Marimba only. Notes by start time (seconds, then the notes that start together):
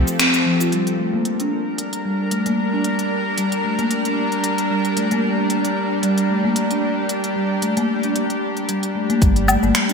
0.19 C4
0.46 F3
0.60 F4
0.72 G3
0.99 A3
1.13 A#3
1.40 D4
2.05 G3
2.32 A3
2.46 A#3
2.73 D4
3.38 G3
3.64 A3
3.79 A#3
4.06 D4
4.71 G3
4.97 A3
5.12 A#3
5.38 D4
6.03 G3
6.30 A3
6.44 A#3
6.71 D4
7.36 G3
7.62 A3
7.77 A#3
8.04 D4
8.69 G3
8.95 A3
9.10 A#3
9.22 G3
9.49 A3
9.63 A#3
9.89 D4